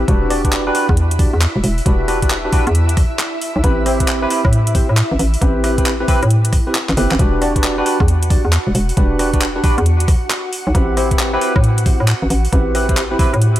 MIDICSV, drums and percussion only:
0, 0, Header, 1, 2, 480
1, 0, Start_track
1, 0, Key_signature, 1, "minor"
1, 0, Tempo, 444444
1, 89, Time_signature, 4, 2, 24, 8
1, 14687, End_track
2, 0, Start_track
2, 0, Title_t, "Drums"
2, 87, Note_on_c, 9, 36, 112
2, 88, Note_on_c, 9, 42, 61
2, 195, Note_off_c, 9, 36, 0
2, 196, Note_off_c, 9, 42, 0
2, 329, Note_on_c, 9, 37, 49
2, 329, Note_on_c, 9, 46, 102
2, 437, Note_off_c, 9, 37, 0
2, 437, Note_off_c, 9, 46, 0
2, 482, Note_on_c, 9, 36, 57
2, 483, Note_on_c, 9, 42, 63
2, 568, Note_off_c, 9, 42, 0
2, 568, Note_on_c, 9, 39, 116
2, 568, Note_on_c, 9, 42, 66
2, 590, Note_off_c, 9, 36, 0
2, 676, Note_off_c, 9, 39, 0
2, 676, Note_off_c, 9, 42, 0
2, 808, Note_on_c, 9, 46, 98
2, 916, Note_off_c, 9, 46, 0
2, 962, Note_on_c, 9, 36, 106
2, 1048, Note_on_c, 9, 42, 65
2, 1070, Note_off_c, 9, 36, 0
2, 1156, Note_off_c, 9, 42, 0
2, 1202, Note_on_c, 9, 42, 66
2, 1287, Note_on_c, 9, 36, 101
2, 1288, Note_on_c, 9, 46, 96
2, 1310, Note_off_c, 9, 42, 0
2, 1395, Note_off_c, 9, 36, 0
2, 1396, Note_off_c, 9, 46, 0
2, 1528, Note_on_c, 9, 39, 116
2, 1528, Note_on_c, 9, 42, 65
2, 1636, Note_off_c, 9, 39, 0
2, 1636, Note_off_c, 9, 42, 0
2, 1767, Note_on_c, 9, 46, 94
2, 1875, Note_off_c, 9, 46, 0
2, 1922, Note_on_c, 9, 46, 52
2, 2007, Note_on_c, 9, 36, 110
2, 2008, Note_on_c, 9, 42, 61
2, 2030, Note_off_c, 9, 46, 0
2, 2115, Note_off_c, 9, 36, 0
2, 2116, Note_off_c, 9, 42, 0
2, 2248, Note_on_c, 9, 37, 50
2, 2248, Note_on_c, 9, 46, 98
2, 2356, Note_off_c, 9, 37, 0
2, 2356, Note_off_c, 9, 46, 0
2, 2402, Note_on_c, 9, 36, 58
2, 2402, Note_on_c, 9, 42, 65
2, 2488, Note_off_c, 9, 42, 0
2, 2488, Note_on_c, 9, 39, 111
2, 2488, Note_on_c, 9, 42, 68
2, 2510, Note_off_c, 9, 36, 0
2, 2596, Note_off_c, 9, 39, 0
2, 2596, Note_off_c, 9, 42, 0
2, 2727, Note_on_c, 9, 46, 103
2, 2728, Note_on_c, 9, 36, 99
2, 2835, Note_off_c, 9, 46, 0
2, 2836, Note_off_c, 9, 36, 0
2, 2882, Note_on_c, 9, 42, 36
2, 2968, Note_off_c, 9, 42, 0
2, 2968, Note_on_c, 9, 42, 66
2, 3076, Note_off_c, 9, 42, 0
2, 3122, Note_on_c, 9, 42, 69
2, 3208, Note_on_c, 9, 36, 97
2, 3208, Note_on_c, 9, 37, 52
2, 3208, Note_on_c, 9, 46, 100
2, 3230, Note_off_c, 9, 42, 0
2, 3316, Note_off_c, 9, 36, 0
2, 3316, Note_off_c, 9, 37, 0
2, 3316, Note_off_c, 9, 46, 0
2, 3448, Note_on_c, 9, 39, 113
2, 3448, Note_on_c, 9, 42, 69
2, 3556, Note_off_c, 9, 39, 0
2, 3556, Note_off_c, 9, 42, 0
2, 3688, Note_on_c, 9, 46, 94
2, 3796, Note_off_c, 9, 46, 0
2, 3929, Note_on_c, 9, 36, 105
2, 3929, Note_on_c, 9, 42, 67
2, 4037, Note_off_c, 9, 36, 0
2, 4037, Note_off_c, 9, 42, 0
2, 4168, Note_on_c, 9, 37, 49
2, 4168, Note_on_c, 9, 46, 109
2, 4276, Note_off_c, 9, 37, 0
2, 4276, Note_off_c, 9, 46, 0
2, 4323, Note_on_c, 9, 36, 58
2, 4323, Note_on_c, 9, 42, 68
2, 4408, Note_off_c, 9, 42, 0
2, 4408, Note_on_c, 9, 39, 112
2, 4408, Note_on_c, 9, 42, 69
2, 4431, Note_off_c, 9, 36, 0
2, 4516, Note_off_c, 9, 39, 0
2, 4516, Note_off_c, 9, 42, 0
2, 4649, Note_on_c, 9, 46, 109
2, 4757, Note_off_c, 9, 46, 0
2, 4803, Note_on_c, 9, 36, 93
2, 4889, Note_on_c, 9, 42, 69
2, 4911, Note_off_c, 9, 36, 0
2, 4997, Note_off_c, 9, 42, 0
2, 5043, Note_on_c, 9, 42, 72
2, 5128, Note_on_c, 9, 36, 87
2, 5129, Note_on_c, 9, 46, 107
2, 5151, Note_off_c, 9, 42, 0
2, 5236, Note_off_c, 9, 36, 0
2, 5237, Note_off_c, 9, 46, 0
2, 5369, Note_on_c, 9, 39, 114
2, 5369, Note_on_c, 9, 42, 70
2, 5477, Note_off_c, 9, 39, 0
2, 5477, Note_off_c, 9, 42, 0
2, 5609, Note_on_c, 9, 46, 97
2, 5717, Note_off_c, 9, 46, 0
2, 5764, Note_on_c, 9, 46, 59
2, 5848, Note_on_c, 9, 36, 106
2, 5850, Note_on_c, 9, 42, 60
2, 5872, Note_off_c, 9, 46, 0
2, 5956, Note_off_c, 9, 36, 0
2, 5958, Note_off_c, 9, 42, 0
2, 6090, Note_on_c, 9, 37, 53
2, 6090, Note_on_c, 9, 46, 108
2, 6198, Note_off_c, 9, 37, 0
2, 6198, Note_off_c, 9, 46, 0
2, 6243, Note_on_c, 9, 36, 59
2, 6244, Note_on_c, 9, 42, 65
2, 6330, Note_off_c, 9, 42, 0
2, 6330, Note_on_c, 9, 39, 113
2, 6330, Note_on_c, 9, 42, 64
2, 6351, Note_off_c, 9, 36, 0
2, 6438, Note_off_c, 9, 39, 0
2, 6438, Note_off_c, 9, 42, 0
2, 6568, Note_on_c, 9, 36, 96
2, 6569, Note_on_c, 9, 46, 110
2, 6676, Note_off_c, 9, 36, 0
2, 6677, Note_off_c, 9, 46, 0
2, 6723, Note_on_c, 9, 42, 36
2, 6809, Note_off_c, 9, 42, 0
2, 6809, Note_on_c, 9, 42, 65
2, 6917, Note_off_c, 9, 42, 0
2, 6963, Note_on_c, 9, 42, 72
2, 7048, Note_on_c, 9, 36, 95
2, 7049, Note_on_c, 9, 37, 54
2, 7049, Note_on_c, 9, 46, 107
2, 7071, Note_off_c, 9, 42, 0
2, 7156, Note_off_c, 9, 36, 0
2, 7157, Note_off_c, 9, 37, 0
2, 7157, Note_off_c, 9, 46, 0
2, 7289, Note_on_c, 9, 39, 114
2, 7289, Note_on_c, 9, 42, 66
2, 7397, Note_off_c, 9, 39, 0
2, 7397, Note_off_c, 9, 42, 0
2, 7444, Note_on_c, 9, 39, 69
2, 7529, Note_on_c, 9, 46, 106
2, 7552, Note_off_c, 9, 39, 0
2, 7637, Note_off_c, 9, 46, 0
2, 7683, Note_on_c, 9, 39, 86
2, 7768, Note_on_c, 9, 36, 113
2, 7770, Note_on_c, 9, 42, 60
2, 7791, Note_off_c, 9, 39, 0
2, 7876, Note_off_c, 9, 36, 0
2, 7878, Note_off_c, 9, 42, 0
2, 8010, Note_on_c, 9, 37, 52
2, 8010, Note_on_c, 9, 46, 102
2, 8118, Note_off_c, 9, 37, 0
2, 8118, Note_off_c, 9, 46, 0
2, 8163, Note_on_c, 9, 36, 59
2, 8164, Note_on_c, 9, 42, 64
2, 8249, Note_off_c, 9, 42, 0
2, 8249, Note_on_c, 9, 39, 116
2, 8249, Note_on_c, 9, 42, 66
2, 8271, Note_off_c, 9, 36, 0
2, 8357, Note_off_c, 9, 39, 0
2, 8357, Note_off_c, 9, 42, 0
2, 8489, Note_on_c, 9, 46, 107
2, 8597, Note_off_c, 9, 46, 0
2, 8642, Note_on_c, 9, 36, 102
2, 8729, Note_on_c, 9, 42, 63
2, 8750, Note_off_c, 9, 36, 0
2, 8837, Note_off_c, 9, 42, 0
2, 8884, Note_on_c, 9, 42, 70
2, 8968, Note_on_c, 9, 36, 97
2, 8969, Note_on_c, 9, 46, 103
2, 8992, Note_off_c, 9, 42, 0
2, 9076, Note_off_c, 9, 36, 0
2, 9077, Note_off_c, 9, 46, 0
2, 9209, Note_on_c, 9, 39, 111
2, 9209, Note_on_c, 9, 42, 66
2, 9317, Note_off_c, 9, 39, 0
2, 9317, Note_off_c, 9, 42, 0
2, 9448, Note_on_c, 9, 46, 104
2, 9556, Note_off_c, 9, 46, 0
2, 9603, Note_on_c, 9, 46, 61
2, 9688, Note_on_c, 9, 36, 119
2, 9689, Note_on_c, 9, 42, 57
2, 9711, Note_off_c, 9, 46, 0
2, 9796, Note_off_c, 9, 36, 0
2, 9797, Note_off_c, 9, 42, 0
2, 9929, Note_on_c, 9, 37, 56
2, 9929, Note_on_c, 9, 46, 105
2, 10037, Note_off_c, 9, 37, 0
2, 10037, Note_off_c, 9, 46, 0
2, 10082, Note_on_c, 9, 36, 61
2, 10083, Note_on_c, 9, 42, 58
2, 10168, Note_off_c, 9, 42, 0
2, 10168, Note_on_c, 9, 39, 119
2, 10168, Note_on_c, 9, 42, 67
2, 10190, Note_off_c, 9, 36, 0
2, 10276, Note_off_c, 9, 39, 0
2, 10276, Note_off_c, 9, 42, 0
2, 10408, Note_on_c, 9, 36, 106
2, 10408, Note_on_c, 9, 46, 107
2, 10516, Note_off_c, 9, 36, 0
2, 10516, Note_off_c, 9, 46, 0
2, 10562, Note_on_c, 9, 42, 35
2, 10648, Note_off_c, 9, 42, 0
2, 10648, Note_on_c, 9, 42, 62
2, 10756, Note_off_c, 9, 42, 0
2, 10803, Note_on_c, 9, 42, 65
2, 10888, Note_on_c, 9, 36, 106
2, 10888, Note_on_c, 9, 37, 59
2, 10888, Note_on_c, 9, 46, 104
2, 10911, Note_off_c, 9, 42, 0
2, 10996, Note_off_c, 9, 36, 0
2, 10996, Note_off_c, 9, 37, 0
2, 10996, Note_off_c, 9, 46, 0
2, 11128, Note_on_c, 9, 39, 121
2, 11128, Note_on_c, 9, 42, 66
2, 11236, Note_off_c, 9, 39, 0
2, 11236, Note_off_c, 9, 42, 0
2, 11368, Note_on_c, 9, 46, 93
2, 11476, Note_off_c, 9, 46, 0
2, 11608, Note_on_c, 9, 36, 125
2, 11608, Note_on_c, 9, 42, 59
2, 11716, Note_off_c, 9, 36, 0
2, 11716, Note_off_c, 9, 42, 0
2, 11848, Note_on_c, 9, 37, 54
2, 11848, Note_on_c, 9, 46, 98
2, 11956, Note_off_c, 9, 37, 0
2, 11956, Note_off_c, 9, 46, 0
2, 12002, Note_on_c, 9, 36, 63
2, 12002, Note_on_c, 9, 42, 61
2, 12088, Note_off_c, 9, 42, 0
2, 12088, Note_on_c, 9, 39, 126
2, 12088, Note_on_c, 9, 42, 64
2, 12110, Note_off_c, 9, 36, 0
2, 12196, Note_off_c, 9, 39, 0
2, 12196, Note_off_c, 9, 42, 0
2, 12327, Note_on_c, 9, 46, 98
2, 12435, Note_off_c, 9, 46, 0
2, 12482, Note_on_c, 9, 36, 111
2, 12567, Note_on_c, 9, 42, 61
2, 12590, Note_off_c, 9, 36, 0
2, 12675, Note_off_c, 9, 42, 0
2, 12722, Note_on_c, 9, 42, 65
2, 12808, Note_on_c, 9, 36, 102
2, 12808, Note_on_c, 9, 46, 99
2, 12830, Note_off_c, 9, 42, 0
2, 12916, Note_off_c, 9, 36, 0
2, 12916, Note_off_c, 9, 46, 0
2, 13047, Note_on_c, 9, 39, 124
2, 13047, Note_on_c, 9, 42, 64
2, 13155, Note_off_c, 9, 39, 0
2, 13155, Note_off_c, 9, 42, 0
2, 13287, Note_on_c, 9, 46, 95
2, 13395, Note_off_c, 9, 46, 0
2, 13442, Note_on_c, 9, 46, 55
2, 13528, Note_on_c, 9, 36, 121
2, 13528, Note_on_c, 9, 42, 61
2, 13550, Note_off_c, 9, 46, 0
2, 13636, Note_off_c, 9, 36, 0
2, 13636, Note_off_c, 9, 42, 0
2, 13768, Note_on_c, 9, 37, 52
2, 13768, Note_on_c, 9, 46, 101
2, 13876, Note_off_c, 9, 37, 0
2, 13876, Note_off_c, 9, 46, 0
2, 13922, Note_on_c, 9, 36, 64
2, 13923, Note_on_c, 9, 42, 59
2, 14009, Note_off_c, 9, 42, 0
2, 14009, Note_on_c, 9, 39, 120
2, 14009, Note_on_c, 9, 42, 63
2, 14030, Note_off_c, 9, 36, 0
2, 14117, Note_off_c, 9, 39, 0
2, 14117, Note_off_c, 9, 42, 0
2, 14248, Note_on_c, 9, 36, 104
2, 14249, Note_on_c, 9, 46, 97
2, 14356, Note_off_c, 9, 36, 0
2, 14357, Note_off_c, 9, 46, 0
2, 14404, Note_on_c, 9, 42, 36
2, 14489, Note_off_c, 9, 42, 0
2, 14489, Note_on_c, 9, 42, 66
2, 14597, Note_off_c, 9, 42, 0
2, 14643, Note_on_c, 9, 42, 68
2, 14687, Note_off_c, 9, 42, 0
2, 14687, End_track
0, 0, End_of_file